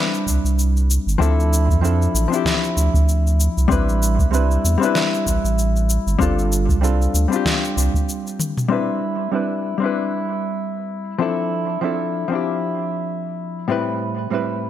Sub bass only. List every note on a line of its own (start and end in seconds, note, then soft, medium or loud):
0.27 0.39 C2 medium
0.44 0.99 C2 medium
1.06 1.16 G1 loud
1.20 1.71 D2 medium
1.69 2.08 F2 loud
2.14 2.27 A1 medium
2.77 2.89 D2 medium
2.94 3.49 D2 medium
3.57 3.67 C2 loud
3.70 4.21 A1 loud
4.19 4.58 C2 medium
4.64 4.77 E2 medium
5.26 5.39 A1 medium
5.44 5.99 A1 medium
6.07 6.16 G1 loud
6.20 6.71 G1 loud
6.69 7.08 C2 loud
7.14 7.27 D2 medium
7.77 7.89 C2 medium